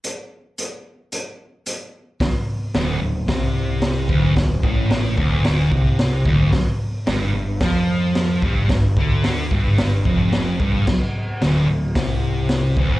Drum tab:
CC |--------|--------|--------|--------|
HH |x-x-x-x-|o-o-o-o-|o-o-o-o-|o-o-o-o-|
SD |--------|o-o-o-o-|o-o-o-o-|o-o-o-o-|
BD |--------|o---o--o|oo-o-o-o|o---o--o|

CC |--------|x-------|
HH |o-o-o-o-|--o-o-o-|
SD |o-o-o-o-|o-o-o-o-|
BD |oo-o-o-o|o---o--o|